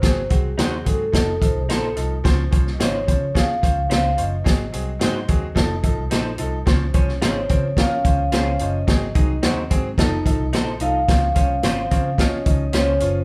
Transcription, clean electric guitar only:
X:1
M:4/4
L:1/16
Q:1/4=109
K:Db
V:1 name="Clean electric guitar"
z4 [EGc] z6 z [E=Ac] z3 | z4 [DFc] z6 z [DFc] z3 | z4 [EGc] z6 z [E=Ac] z3 | z4 [FAc] z6 z [FAc] z3 |
z4 [EGc] z6 z [E=Ac] z3 | z4 [DFc] z6 z [DFc] z3 |]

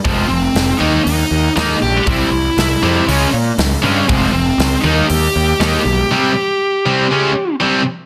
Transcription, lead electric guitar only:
X:1
M:4/4
L:1/8
Q:1/4=119
K:Fm
V:1 name="Lead electric guitar"
A, C2 E E2 z G | =E2 E2 z4 | A, C2 E G4- | G6 z2 |]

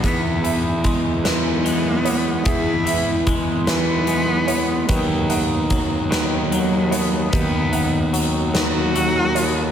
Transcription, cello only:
X:1
M:6/8
L:1/8
Q:3/8=49
K:E
V:1 name="Cello"
B,2 z B,3 | E2 z B,3 | F,2 z F,3 | B,2 z F3 |]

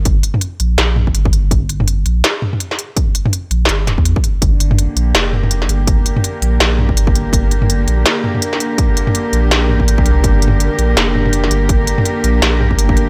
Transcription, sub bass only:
X:1
M:4/4
L:1/16
Q:"Swing 16ths" 1/4=165
K:Gm
V:1 name="Sub bass" clef=bass
G,,,2 z4 B,,,2 B,,,3 G,,,4- G,,,- | G,,,6 B,,,2 z8 | z6 B,,,2 G,,,2 D,,, =E,,2 z3 | G,,,4- G,,, z B,,,2 F,,,6 G,,,2- |
G,,,2 z4 B,,,2 B,,,3 G,,,4- G,,,- | G,,,6 B,,,2 z8 | z6 B,,,4 A,,,4 C,,2 | G,,,4- G,,, z B,,,2 F,,,6 G,,,2- |
G,,,2 z4 B,,,2 B,,,3 G,,,4- G,,, |]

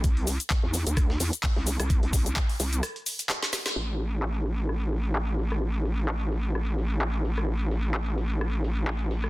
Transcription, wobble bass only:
X:1
M:4/4
L:1/16
Q:"Swing 16ths" 1/4=129
K:Am
V:1 name="Wobble bass" clef=bass
C,,3 z2 E,,2 D,,3 E,, z2 C,,2 C,,- | C,, C,,3 z2 C,,2 z8 | A,,,16- | A,,,16- |
A,,,16 |]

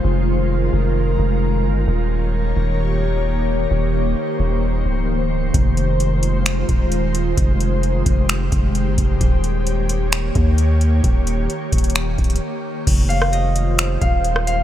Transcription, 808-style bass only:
X:1
M:4/4
L:1/16
Q:1/4=131
K:Fm
V:1 name="808-style bass" clef=bass
F,,,6 F,,,4 F,,,4 G,,,2 | E,,,6 E,,,8- E,,,2 | E,,,4 z2 E,,,4 D,,,6 | F,,,8- F,,,2 E,,,6 |
F,,,6 F,,,4 F,,,3 G,,, F,,,2 | E,,,8- E,,,2 E,,6 | E,,,4 z2 E,,,4 D,,,2 z4 | F,,,8- F,,,2 E,,,6 |]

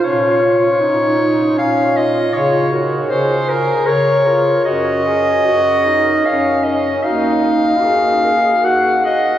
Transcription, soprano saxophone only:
X:1
M:3/4
L:1/8
Q:1/4=77
K:Bbm
V:1 name="Soprano saxophone"
d4 f e | d z c B d2 | e4 f e | f4 g e |]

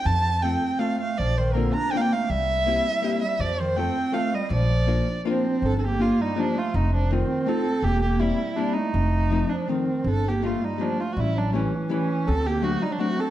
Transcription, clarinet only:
X:1
M:3/4
L:1/16
Q:1/4=162
K:Bb
V:1 name="Clarinet"
z4 C4 A,2 A,2 | F,2 E,2 D,2 D2 B,/2 A,/2 B, A,2 | G,8- G,2 G,2 | F,2 E,2 C4 A,2 G,2 |
F,8 F,4 | [K:Gm] D3/2 C/2 B,2 B,2 G,2 F,2 A,2 | A,2 F,2 E,4 C4 | B,2 B,2 G,4 G,2 A,2- |
A,6 F,2 E,4 | D2 B,2 A,2 G,2 F,2 A,3/2 A,/2 | G,2 ^F,2 =E,4 E,4 | C2 B,2 A,2 G, ^F, A,2 C2 |]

